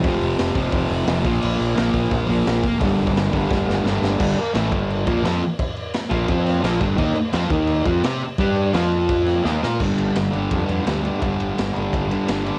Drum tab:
CC |----------------|x---------------|----------------|x-x-x-x-x-x-x-x-|
RD |----------------|----------------|----------------|----------------|
HH |o-o-o-o-o-o-o-o-|--o-o-o-o-o-o-o-|o-o-o-o---------|----------------|
SD |----o-------o---|----o-------o---|----o---o-o-o-o-|----o-------o---|
BD |o-----o-o-----o-|------o-o-----o-|o--o--o-o-------|o-----o---o-----|

CC |x-x-x-x-x-x-x-x-|x-x-x-x-x-x-x-x-|x-x-x-x-x-x-----|x---------------|
RD |----------------|----------------|----------------|--x-x-x-x-x-x-x-|
HH |----------------|----------------|----------------|----------------|
SD |----o-----o-o---|----o-------o---|----o-----o-o-o-|----o-------o---|
BD |o-----o-o-----o-|o-----o---o-----|o-------o-------|o-------o-------|

CC |----------------|
RD |x-x-x-x-x-x-x-x-|
HH |----------------|
SD |----o-------o---|
BD |o-------o-------|